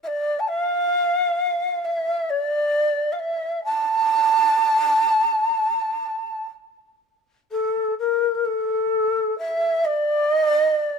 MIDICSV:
0, 0, Header, 1, 2, 480
1, 0, Start_track
1, 0, Tempo, 902256
1, 11, Time_signature, 4, 2, 24, 8
1, 2411, Tempo, 980392
1, 3851, Tempo, 936037
1, 5653, End_track
2, 0, Start_track
2, 0, Title_t, "Shakuhachi"
2, 0, Program_c, 0, 77
2, 17, Note_on_c, 0, 76, 72
2, 37, Note_on_c, 0, 74, 78
2, 42, Note_off_c, 0, 76, 0
2, 209, Note_on_c, 0, 81, 59
2, 217, Note_off_c, 0, 74, 0
2, 253, Note_on_c, 0, 77, 91
2, 261, Note_off_c, 0, 81, 0
2, 981, Note_on_c, 0, 76, 78
2, 989, Note_off_c, 0, 77, 0
2, 1222, Note_on_c, 0, 73, 94
2, 1230, Note_off_c, 0, 76, 0
2, 1280, Note_off_c, 0, 73, 0
2, 1280, Note_on_c, 0, 74, 94
2, 1660, Note_on_c, 0, 77, 59
2, 1668, Note_off_c, 0, 74, 0
2, 1697, Note_on_c, 0, 76, 80
2, 1705, Note_off_c, 0, 77, 0
2, 1933, Note_off_c, 0, 76, 0
2, 1936, Note_on_c, 0, 81, 101
2, 3353, Note_off_c, 0, 81, 0
2, 3872, Note_on_c, 0, 69, 67
2, 4090, Note_off_c, 0, 69, 0
2, 4116, Note_on_c, 0, 70, 70
2, 4298, Note_off_c, 0, 70, 0
2, 4298, Note_on_c, 0, 70, 58
2, 4353, Note_on_c, 0, 69, 69
2, 4360, Note_off_c, 0, 70, 0
2, 4824, Note_off_c, 0, 69, 0
2, 4828, Note_on_c, 0, 76, 81
2, 5069, Note_on_c, 0, 74, 99
2, 5077, Note_off_c, 0, 76, 0
2, 5320, Note_off_c, 0, 74, 0
2, 5320, Note_on_c, 0, 75, 99
2, 5387, Note_off_c, 0, 75, 0
2, 5387, Note_on_c, 0, 74, 99
2, 5459, Note_off_c, 0, 74, 0
2, 5459, Note_on_c, 0, 75, 99
2, 5525, Note_off_c, 0, 75, 0
2, 5525, Note_on_c, 0, 74, 99
2, 5653, Note_off_c, 0, 74, 0
2, 5653, End_track
0, 0, End_of_file